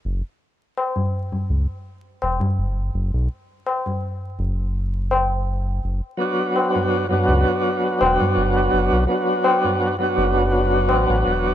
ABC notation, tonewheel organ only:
X:1
M:4/4
L:1/16
Q:"Swing 16ths" 1/4=83
K:Bdor
V:1 name="Tonewheel organ"
z16 | z16 | z2 [F,B,DF]4- [F,B,DF] [F,B,DF]8- [F,B,DF]- | [F,B,DF]2 [F,B,DF]4- [F,B,DF] [F,B,DF]8- [F,B,DF] |]